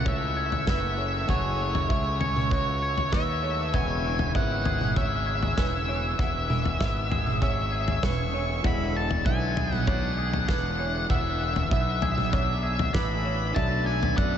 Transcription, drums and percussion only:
0.06 kick, floor tom
0.52 floor tom
0.67 kick, snare
1.29 kick, floor tom
1.75 floor tom
1.90 kick
2.21 floor tom
2.36 mid tom
2.51 kick, floor tom
2.98 floor tom
3.13 kick, snare
3.74 kick, floor tom
4.19 floor tom
4.35 kick
4.65 floor tom
4.81 mid tom
4.96 kick, floor tom
5.43 floor tom
5.57 kick, snare
6.19 kick, floor tom
6.50 mid tom
6.65 floor tom
6.81 kick, snare
7.12 floor tom
7.27 mid tom
7.42 kick, floor tom
7.88 floor tom
8.03 kick, snare, mid tom
8.64 kick, floor tom
9.11 floor tom
9.26 kick
9.57 floor tom
9.72 mid tom
9.87 kick, floor tom
10.33 floor tom
10.49 kick, snare
11.10 kick, floor tom
11.56 floor tom
11.71 kick
12.02 floor tom
12.18 mid tom
12.33 kick, floor tom
12.79 floor tom
12.95 kick, snare
13.56 kick, floor tom
14.03 floor tom
14.18 kick

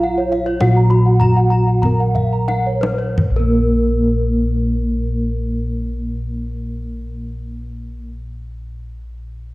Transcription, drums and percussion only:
0.32 kendang slap
0.61 kendang high
0.91 kendang slap
1.21 kendang low
1.52 kendang slap
1.83 kendang low
2.15 kendang low
2.48 kendang high
2.83 kendang high
3.18 kendang low

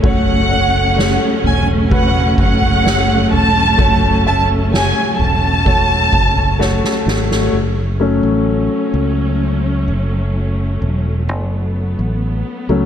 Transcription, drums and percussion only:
0.04 kick, floor tom
0.99 snare
1.44 floor tom
1.91 kick
2.38 kick
2.62 floor tom
2.87 snare
3.33 floor tom
3.79 kick, floor tom
4.74 snare
5.19 floor tom
5.66 kick
6.13 kick
6.36 floor tom
6.61 snare
6.84 snare
7.08 snare
7.31 snare

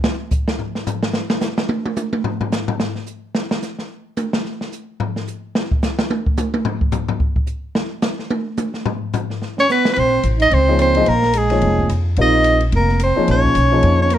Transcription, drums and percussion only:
0.04 snare
0.31 kick, hi-hat pedal
0.48 snare
0.59 floor tom
0.75 snare
0.86 floor tom, hi-hat pedal
1.03 snare
1.13 snare
1.30 snare
1.41 snare, hi-hat pedal
1.58 snare
1.69 high tom
1.86 high tom
1.96 hi-hat pedal, high tom
2.13 high tom
2.24 floor tom
2.41 floor tom
2.52 snare, hi-hat pedal
2.68 floor tom
2.80 snare
2.95 snare
3.06 hi-hat pedal
3.35 snare
3.51 snare
3.62 snare, hi-hat pedal
3.79 snare
4.17 hi-hat pedal, high tom
4.33 snare
4.45 snare
4.61 snare
4.72 hi-hat pedal
5.00 floor tom
5.16 snare
5.27 hi-hat pedal
5.55 snare
5.71 kick
5.82 snare, hi-hat pedal
5.99 snare
6.10 high tom
6.26 kick
6.37 hi-hat pedal, high tom
6.54 high tom
6.65 floor tom
6.81 kick
6.92 floor tom, hi-hat pedal
7.08 floor tom
7.20 kick
7.36 kick
7.47 hi-hat pedal
7.75 snare
8.02 snare, hi-hat pedal
8.19 snare
8.30 high tom
8.57 hi-hat pedal, high tom
8.74 snare
8.86 floor tom
9.13 floor tom, hi-hat pedal
9.30 snare
9.42 snare
9.58 snare
9.69 snare, hi-hat pedal
9.85 snare
9.96 ride
10.23 hi-hat pedal, ride
10.40 ride
10.51 ride
10.79 cross-stick, hi-hat pedal, ride
10.95 ride
11.06 ride
11.23 snare
11.33 hi-hat pedal, ride
11.50 snare, ride
11.62 ride
11.78 kick
11.89 cross-stick, hi-hat pedal, ride
12.16 ride
12.44 hi-hat pedal, ride
12.60 ride
12.72 ride
12.89 snare
12.99 cross-stick, hi-hat pedal, ride
13.28 snare, ride
13.44 kick
13.55 hi-hat pedal, ride
13.83 ride
14.10 cross-stick, hi-hat pedal, ride

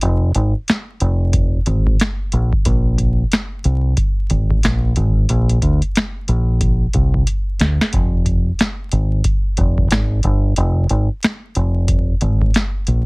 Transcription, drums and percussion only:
0.01 closed hi-hat
0.35 closed hi-hat
0.68 snare, closed hi-hat
1.00 closed hi-hat
1.33 kick, closed hi-hat
1.66 kick, closed hi-hat
1.87 kick
2.00 snare, closed hi-hat
2.32 closed hi-hat
2.53 kick
2.65 kick, closed hi-hat
2.98 kick, closed hi-hat
3.32 snare, closed hi-hat
3.64 closed hi-hat
3.97 kick, closed hi-hat
4.30 kick, closed hi-hat
4.50 kick
4.63 snare, closed hi-hat
4.96 kick, closed hi-hat
5.29 closed hi-hat
5.49 closed hi-hat
5.62 kick, closed hi-hat
5.82 closed hi-hat
5.96 snare, closed hi-hat
6.28 closed hi-hat
6.61 kick, closed hi-hat
6.93 kick, closed hi-hat
7.14 kick
7.27 closed hi-hat
7.60 snare, closed hi-hat
7.81 snare
7.93 kick, closed hi-hat
8.26 kick, closed hi-hat
8.59 snare, closed hi-hat
8.92 closed hi-hat
9.24 kick, closed hi-hat
9.57 kick, closed hi-hat
9.78 kick
9.91 snare, closed hi-hat
10.23 kick, closed hi-hat
10.56 closed hi-hat
10.89 closed hi-hat
11.23 snare, closed hi-hat
11.55 closed hi-hat
11.88 kick, closed hi-hat
12.21 kick, closed hi-hat
12.42 kick
12.54 snare, closed hi-hat
12.87 closed hi-hat

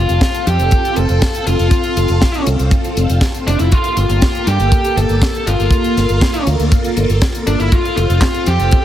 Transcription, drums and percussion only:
0.09 closed hi-hat
0.21 kick, snare, closed hi-hat
0.34 closed hi-hat
0.47 closed hi-hat
0.59 closed hi-hat
0.71 kick, closed hi-hat
0.85 closed hi-hat
0.96 closed hi-hat
1.09 closed hi-hat
1.22 kick, snare, closed hi-hat
1.35 closed hi-hat
1.47 closed hi-hat
1.59 closed hi-hat
1.71 kick, closed hi-hat
1.84 closed hi-hat
1.97 closed hi-hat
2.08 closed hi-hat
2.22 kick, snare, closed hi-hat
2.34 closed hi-hat
2.47 closed hi-hat
2.59 closed hi-hat
2.71 kick, closed hi-hat
2.85 closed hi-hat
2.97 closed hi-hat
3.10 closed hi-hat
3.21 kick, snare, closed hi-hat
3.34 closed hi-hat
3.48 closed hi-hat
3.59 closed hi-hat
3.72 kick, closed hi-hat
3.84 closed hi-hat
3.97 closed hi-hat
4.09 closed hi-hat
4.22 kick, snare, closed hi-hat
4.35 closed hi-hat
4.47 closed hi-hat
4.60 closed hi-hat
4.72 kick, closed hi-hat
4.84 closed hi-hat
4.97 closed hi-hat
5.09 closed hi-hat
5.22 kick, snare, closed hi-hat
5.35 closed hi-hat
5.47 closed hi-hat
5.60 closed hi-hat
5.71 kick, closed hi-hat
5.84 closed hi-hat
5.97 snare, closed hi-hat
6.09 closed hi-hat
6.21 kick, snare, closed hi-hat
6.34 closed hi-hat
6.47 closed hi-hat
6.60 closed hi-hat
6.72 kick, closed hi-hat
6.84 closed hi-hat
6.97 closed hi-hat
7.10 closed hi-hat
7.22 kick, snare, closed hi-hat
7.35 closed hi-hat
7.47 closed hi-hat
7.60 closed hi-hat
7.72 kick, closed hi-hat
7.85 closed hi-hat
7.97 closed hi-hat
8.10 closed hi-hat
8.21 kick, snare, clap, closed hi-hat
8.34 closed hi-hat
8.46 closed hi-hat
8.60 closed hi-hat
8.71 kick, closed hi-hat

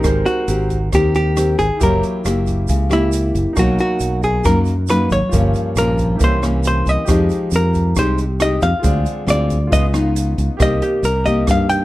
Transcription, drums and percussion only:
0.04 kick, cross-stick, closed hi-hat, shaker
0.26 closed hi-hat, shaker
0.48 closed hi-hat, shaker
0.70 kick, closed hi-hat, shaker
0.93 kick, cross-stick, closed hi-hat, shaker
1.15 closed hi-hat, shaker
1.37 cross-stick, closed hi-hat, shaker
1.59 kick, closed hi-hat, shaker
1.81 kick, closed hi-hat, shaker
2.03 closed hi-hat, shaker
2.25 cross-stick, closed hi-hat, shaker
2.47 kick, closed hi-hat, shaker
2.68 kick, closed hi-hat, shaker
2.91 cross-stick, closed hi-hat, shaker
3.12 closed hi-hat, shaker
3.35 kick, closed hi-hat, shaker
3.56 kick, cross-stick, closed hi-hat, shaker
3.79 closed hi-hat, shaker
4.00 closed hi-hat, shaker
4.23 kick, closed hi-hat, shaker
4.44 kick, cross-stick, closed hi-hat, shaker
4.65 closed hi-hat, shaker
4.87 cross-stick, closed hi-hat, shaker
5.10 kick, closed hi-hat, shaker
5.32 kick, closed hi-hat, shaker
5.54 closed hi-hat, shaker
5.76 cross-stick, closed hi-hat, shaker
5.98 kick, closed hi-hat, shaker
6.20 kick, closed hi-hat, shaker
6.43 cross-stick, closed hi-hat, shaker
6.64 closed hi-hat, shaker
6.86 kick, closed hi-hat, shaker
7.07 kick, cross-stick, closed hi-hat, shaker
7.29 closed hi-hat, shaker
7.51 closed hi-hat, shaker
7.74 kick, closed hi-hat, shaker
7.96 kick, cross-stick, closed hi-hat, shaker
8.18 closed hi-hat, shaker
8.40 cross-stick, closed hi-hat, shaker
8.61 kick, closed hi-hat, shaker
8.84 kick, closed hi-hat, shaker
9.06 closed hi-hat, shaker
9.28 cross-stick, closed hi-hat, shaker
9.50 kick, closed hi-hat, shaker
9.72 kick, closed hi-hat, shaker
9.94 cross-stick, closed hi-hat, shaker
10.16 closed hi-hat, shaker
10.38 kick, closed hi-hat, shaker
10.60 kick, cross-stick, closed hi-hat, shaker
10.82 closed hi-hat, shaker
11.04 closed hi-hat, shaker
11.26 kick, closed hi-hat, shaker
11.47 kick, cross-stick, closed hi-hat, shaker
11.70 closed hi-hat, shaker

